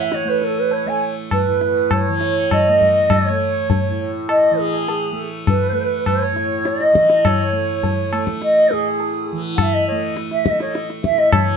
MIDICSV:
0, 0, Header, 1, 5, 480
1, 0, Start_track
1, 0, Tempo, 595829
1, 2503, Time_signature, 7, 2, 24, 8
1, 4893, Tempo, 583658
1, 9412, End_track
2, 0, Start_track
2, 0, Title_t, "Bansuri"
2, 0, Program_c, 0, 73
2, 0, Note_on_c, 0, 76, 79
2, 109, Note_on_c, 0, 73, 86
2, 121, Note_off_c, 0, 76, 0
2, 229, Note_on_c, 0, 71, 75
2, 241, Note_off_c, 0, 73, 0
2, 352, Note_on_c, 0, 69, 81
2, 364, Note_off_c, 0, 71, 0
2, 473, Note_on_c, 0, 71, 73
2, 485, Note_off_c, 0, 69, 0
2, 586, Note_on_c, 0, 73, 73
2, 598, Note_off_c, 0, 71, 0
2, 705, Note_on_c, 0, 80, 75
2, 717, Note_off_c, 0, 73, 0
2, 822, Note_off_c, 0, 80, 0
2, 1060, Note_on_c, 0, 71, 74
2, 1548, Note_on_c, 0, 73, 90
2, 1560, Note_off_c, 0, 71, 0
2, 2026, Note_on_c, 0, 75, 86
2, 2038, Note_off_c, 0, 73, 0
2, 2509, Note_on_c, 0, 73, 75
2, 2521, Note_off_c, 0, 75, 0
2, 3225, Note_off_c, 0, 73, 0
2, 3454, Note_on_c, 0, 75, 92
2, 3700, Note_on_c, 0, 68, 82
2, 3712, Note_off_c, 0, 75, 0
2, 4177, Note_off_c, 0, 68, 0
2, 4417, Note_on_c, 0, 71, 78
2, 4886, Note_on_c, 0, 72, 83
2, 4898, Note_off_c, 0, 71, 0
2, 5009, Note_off_c, 0, 72, 0
2, 5009, Note_on_c, 0, 73, 83
2, 5377, Note_on_c, 0, 75, 88
2, 5390, Note_off_c, 0, 73, 0
2, 5867, Note_on_c, 0, 73, 85
2, 5879, Note_off_c, 0, 75, 0
2, 6586, Note_off_c, 0, 73, 0
2, 6826, Note_on_c, 0, 75, 97
2, 7069, Note_on_c, 0, 68, 85
2, 7082, Note_off_c, 0, 75, 0
2, 7546, Note_off_c, 0, 68, 0
2, 7753, Note_on_c, 0, 78, 65
2, 7802, Note_on_c, 0, 76, 90
2, 7814, Note_off_c, 0, 78, 0
2, 7902, Note_on_c, 0, 75, 76
2, 7914, Note_off_c, 0, 76, 0
2, 8011, Note_off_c, 0, 75, 0
2, 8016, Note_on_c, 0, 73, 60
2, 8130, Note_off_c, 0, 73, 0
2, 8383, Note_on_c, 0, 76, 91
2, 8489, Note_on_c, 0, 75, 83
2, 8501, Note_off_c, 0, 76, 0
2, 8613, Note_off_c, 0, 75, 0
2, 8620, Note_on_c, 0, 73, 65
2, 8730, Note_off_c, 0, 73, 0
2, 8972, Note_on_c, 0, 76, 94
2, 9091, Note_on_c, 0, 75, 82
2, 9103, Note_off_c, 0, 76, 0
2, 9197, Note_off_c, 0, 75, 0
2, 9202, Note_on_c, 0, 73, 79
2, 9412, Note_off_c, 0, 73, 0
2, 9412, End_track
3, 0, Start_track
3, 0, Title_t, "Harmonium"
3, 0, Program_c, 1, 20
3, 0, Note_on_c, 1, 78, 58
3, 217, Note_on_c, 1, 73, 49
3, 226, Note_off_c, 1, 78, 0
3, 582, Note_on_c, 1, 71, 55
3, 589, Note_off_c, 1, 73, 0
3, 691, Note_on_c, 1, 73, 51
3, 704, Note_off_c, 1, 71, 0
3, 919, Note_off_c, 1, 73, 0
3, 1181, Note_on_c, 1, 71, 49
3, 1664, Note_on_c, 1, 73, 56
3, 1677, Note_off_c, 1, 71, 0
3, 2145, Note_on_c, 1, 75, 60
3, 2159, Note_off_c, 1, 73, 0
3, 2626, Note_on_c, 1, 73, 58
3, 2638, Note_off_c, 1, 75, 0
3, 3311, Note_off_c, 1, 73, 0
3, 3579, Note_on_c, 1, 75, 55
3, 3818, Note_on_c, 1, 68, 60
3, 3826, Note_off_c, 1, 75, 0
3, 4264, Note_off_c, 1, 68, 0
3, 4524, Note_on_c, 1, 71, 46
3, 5010, Note_on_c, 1, 73, 57
3, 5022, Note_off_c, 1, 71, 0
3, 5496, Note_on_c, 1, 75, 52
3, 5510, Note_off_c, 1, 73, 0
3, 5981, Note_on_c, 1, 73, 60
3, 5994, Note_off_c, 1, 75, 0
3, 6670, Note_off_c, 1, 73, 0
3, 6943, Note_on_c, 1, 75, 50
3, 7184, Note_on_c, 1, 68, 57
3, 7190, Note_off_c, 1, 75, 0
3, 7630, Note_off_c, 1, 68, 0
3, 7896, Note_on_c, 1, 76, 64
3, 8016, Note_on_c, 1, 75, 53
3, 8022, Note_off_c, 1, 76, 0
3, 8240, Note_off_c, 1, 75, 0
3, 8495, Note_on_c, 1, 76, 57
3, 8620, Note_off_c, 1, 76, 0
3, 8620, Note_on_c, 1, 75, 66
3, 8841, Note_off_c, 1, 75, 0
3, 9090, Note_on_c, 1, 76, 64
3, 9313, Note_off_c, 1, 76, 0
3, 9412, End_track
4, 0, Start_track
4, 0, Title_t, "Tanpura"
4, 0, Program_c, 2, 104
4, 0, Note_on_c, 2, 45, 50
4, 0, Note_on_c, 2, 52, 59
4, 0, Note_on_c, 2, 57, 54
4, 200, Note_off_c, 2, 57, 0
4, 200, Note_on_c, 2, 57, 49
4, 691, Note_off_c, 2, 57, 0
4, 691, Note_on_c, 2, 57, 53
4, 1176, Note_off_c, 2, 45, 0
4, 1179, Note_on_c, 2, 45, 51
4, 1670, Note_off_c, 2, 52, 0
4, 1673, Note_on_c, 2, 52, 54
4, 2165, Note_off_c, 2, 57, 0
4, 2165, Note_on_c, 2, 57, 54
4, 2653, Note_off_c, 2, 57, 0
4, 2653, Note_on_c, 2, 57, 53
4, 3139, Note_off_c, 2, 45, 0
4, 3143, Note_on_c, 2, 45, 61
4, 3625, Note_off_c, 2, 52, 0
4, 3629, Note_on_c, 2, 52, 53
4, 4126, Note_off_c, 2, 57, 0
4, 4126, Note_on_c, 2, 57, 48
4, 4610, Note_off_c, 2, 57, 0
4, 4610, Note_on_c, 2, 57, 50
4, 5094, Note_off_c, 2, 45, 0
4, 5098, Note_on_c, 2, 45, 57
4, 5589, Note_off_c, 2, 52, 0
4, 5593, Note_on_c, 2, 52, 53
4, 6087, Note_off_c, 2, 57, 0
4, 6087, Note_on_c, 2, 57, 48
4, 6580, Note_off_c, 2, 57, 0
4, 6580, Note_on_c, 2, 57, 59
4, 7070, Note_off_c, 2, 45, 0
4, 7073, Note_on_c, 2, 45, 47
4, 7558, Note_off_c, 2, 52, 0
4, 7561, Note_on_c, 2, 52, 61
4, 8053, Note_off_c, 2, 57, 0
4, 8053, Note_on_c, 2, 57, 53
4, 8537, Note_off_c, 2, 57, 0
4, 8537, Note_on_c, 2, 57, 50
4, 9025, Note_off_c, 2, 45, 0
4, 9029, Note_on_c, 2, 45, 54
4, 9205, Note_off_c, 2, 52, 0
4, 9208, Note_on_c, 2, 52, 54
4, 9412, Note_off_c, 2, 45, 0
4, 9412, Note_off_c, 2, 52, 0
4, 9412, Note_off_c, 2, 57, 0
4, 9412, End_track
5, 0, Start_track
5, 0, Title_t, "Tabla"
5, 95, Note_on_c, 9, 62, 65
5, 176, Note_off_c, 9, 62, 0
5, 334, Note_on_c, 9, 62, 48
5, 414, Note_off_c, 9, 62, 0
5, 575, Note_on_c, 9, 63, 74
5, 655, Note_off_c, 9, 63, 0
5, 1058, Note_on_c, 9, 60, 62
5, 1058, Note_on_c, 9, 64, 58
5, 1138, Note_off_c, 9, 60, 0
5, 1138, Note_off_c, 9, 64, 0
5, 1298, Note_on_c, 9, 62, 59
5, 1379, Note_off_c, 9, 62, 0
5, 1536, Note_on_c, 9, 60, 70
5, 1536, Note_on_c, 9, 64, 66
5, 1617, Note_off_c, 9, 60, 0
5, 1617, Note_off_c, 9, 64, 0
5, 1778, Note_on_c, 9, 62, 55
5, 1859, Note_off_c, 9, 62, 0
5, 2025, Note_on_c, 9, 60, 67
5, 2025, Note_on_c, 9, 64, 65
5, 2105, Note_off_c, 9, 60, 0
5, 2105, Note_off_c, 9, 64, 0
5, 2265, Note_on_c, 9, 64, 49
5, 2345, Note_off_c, 9, 64, 0
5, 2497, Note_on_c, 9, 60, 90
5, 2497, Note_on_c, 9, 64, 85
5, 2577, Note_off_c, 9, 60, 0
5, 2577, Note_off_c, 9, 64, 0
5, 2979, Note_on_c, 9, 63, 69
5, 2979, Note_on_c, 9, 64, 61
5, 3059, Note_off_c, 9, 63, 0
5, 3059, Note_off_c, 9, 64, 0
5, 3456, Note_on_c, 9, 60, 65
5, 3536, Note_off_c, 9, 60, 0
5, 3935, Note_on_c, 9, 63, 71
5, 4016, Note_off_c, 9, 63, 0
5, 4409, Note_on_c, 9, 60, 68
5, 4409, Note_on_c, 9, 64, 64
5, 4489, Note_off_c, 9, 60, 0
5, 4489, Note_off_c, 9, 64, 0
5, 4884, Note_on_c, 9, 60, 78
5, 4884, Note_on_c, 9, 64, 58
5, 4966, Note_off_c, 9, 60, 0
5, 4966, Note_off_c, 9, 64, 0
5, 5131, Note_on_c, 9, 62, 51
5, 5213, Note_off_c, 9, 62, 0
5, 5370, Note_on_c, 9, 62, 63
5, 5452, Note_off_c, 9, 62, 0
5, 5494, Note_on_c, 9, 62, 57
5, 5576, Note_off_c, 9, 62, 0
5, 5616, Note_on_c, 9, 37, 58
5, 5698, Note_off_c, 9, 37, 0
5, 5734, Note_on_c, 9, 62, 56
5, 5816, Note_off_c, 9, 62, 0
5, 5859, Note_on_c, 9, 60, 91
5, 5859, Note_on_c, 9, 64, 88
5, 5941, Note_off_c, 9, 60, 0
5, 5941, Note_off_c, 9, 64, 0
5, 6341, Note_on_c, 9, 63, 61
5, 6341, Note_on_c, 9, 64, 64
5, 6423, Note_off_c, 9, 63, 0
5, 6423, Note_off_c, 9, 64, 0
5, 6580, Note_on_c, 9, 60, 62
5, 6663, Note_off_c, 9, 60, 0
5, 6700, Note_on_c, 9, 37, 56
5, 6782, Note_off_c, 9, 37, 0
5, 6820, Note_on_c, 9, 62, 67
5, 6902, Note_off_c, 9, 62, 0
5, 7059, Note_on_c, 9, 62, 48
5, 7141, Note_off_c, 9, 62, 0
5, 7299, Note_on_c, 9, 63, 69
5, 7381, Note_off_c, 9, 63, 0
5, 7777, Note_on_c, 9, 60, 70
5, 7777, Note_on_c, 9, 64, 63
5, 7859, Note_off_c, 9, 60, 0
5, 7859, Note_off_c, 9, 64, 0
5, 8259, Note_on_c, 9, 62, 76
5, 8341, Note_off_c, 9, 62, 0
5, 8379, Note_on_c, 9, 62, 49
5, 8462, Note_off_c, 9, 62, 0
5, 8498, Note_on_c, 9, 37, 64
5, 8580, Note_off_c, 9, 37, 0
5, 8618, Note_on_c, 9, 62, 54
5, 8701, Note_off_c, 9, 62, 0
5, 8740, Note_on_c, 9, 62, 65
5, 8822, Note_off_c, 9, 62, 0
5, 8862, Note_on_c, 9, 62, 57
5, 8945, Note_off_c, 9, 62, 0
5, 8978, Note_on_c, 9, 37, 53
5, 9060, Note_off_c, 9, 37, 0
5, 9095, Note_on_c, 9, 62, 60
5, 9177, Note_off_c, 9, 62, 0
5, 9211, Note_on_c, 9, 60, 92
5, 9211, Note_on_c, 9, 64, 78
5, 9294, Note_off_c, 9, 60, 0
5, 9294, Note_off_c, 9, 64, 0
5, 9412, End_track
0, 0, End_of_file